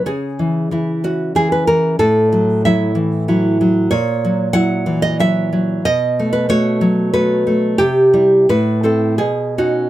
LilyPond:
\new Staff \with { instrumentName = "Nylon-string guitar" } { \time 3/4 \key fis \dorian \tempo 4 = 92 << { gis'4. fis'8 gis'16 b'16 ais'8 | a'4 e''8 r4. | cis''4 fis''8. dis''16 e''4 | dis''8. b'16 cis''4 b'4 |
g'4 b'8 a'8 gis'8 fis'8 | } \\ { cis8 e8 <e e'>8 cis'8 <e e'>8 e8 | a,8 fis8 <fis e'>8 e8 <fis e'>8 fis8 | ais,8 fis8 <fis e'>8 e8 <fis e'>8 fis8 | b,8 a8 <a fis'>8 fis8 <a fis'>8 a8 |
c8 <g e'>8 a,8 <c' e'>8 b,8 <cis' dis'>8 | } >> }